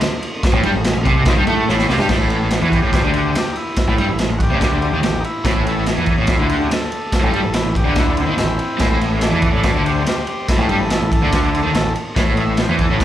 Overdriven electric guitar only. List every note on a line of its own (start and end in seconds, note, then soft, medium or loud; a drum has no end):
0.01 muted overdriven electric guitar stroke medium
0.53 0.63 A2 loud
0.64 0.74 G3 loud
0.75 0.91 A2 medium
0.95 1.04 A2 medium
1.05 1.25 C3 loud
1.27 1.36 D#3 loud
1.38 1.47 G3 loud
1.48 1.68 A3 loud
1.69 1.89 A2 loud
1.89 1.99 C3 loud
2.00 2.09 G3 loud
2.10 2.62 A2 medium
2.62 2.82 E3 loud
2.83 3.03 A2 medium
3.04 3.35 D3 medium
3.36 muted overdriven electric guitar stroke medium
3.88 3.98 A2 medium
3.98 4.08 G3 loud
4.08 4.25 A2 medium
4.30 4.47 A2 medium
4.50 4.92 D3 loud
4.93 5.02 D#3 medium
5.03 5.20 A2 medium
5.45 5.97 A2 medium
5.97 6.18 E3 medium
6.18 6.39 A2 medium
6.39 6.69 D3 medium
6.70 muted overdriven electric guitar stroke medium
7.21 7.32 A2 loud
7.31 7.42 G3 loud
7.42 7.60 A2 medium
7.64 7.82 A2 medium
7.85 8.26 D3 loud
8.27 8.36 D#3 loud
8.37 8.55 A2 medium
8.78 9.31 A2 medium
9.31 9.51 E3 loud
9.52 9.73 A2 medium
9.74 10.05 D3 medium
10.05 muted overdriven electric guitar stroke medium
10.58 10.68 A2 loud
10.69 10.79 G3 loud
10.80 10.97 A2 medium
11.01 11.18 A2 medium
11.23 11.63 D3 loud
11.63 11.73 D#3 loud
11.76 11.92 A2 medium
12.16 12.68 A2 loud
12.70 12.89 E3 loud
12.91 13.04 A2 loud